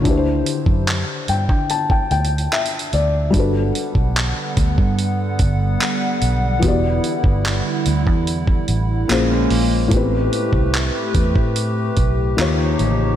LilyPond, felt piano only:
\new Staff \with { instrumentName = "Felt piano" } { \time 4/4 \key g \major \tempo 4 = 73 << { r4. g''8 a''16 g''16 g''8 e''8 d''8 | r1 | r1 | r1 | } \\ { <d d' e' g' b' c''>1 | <g d' fis' a' b'>1 | <e b fis' g' d''>2. <bes, bes des' aes' c''>4 | <a, a b c' g' b'>2. <ees bes f' g' des''>4 | } >> }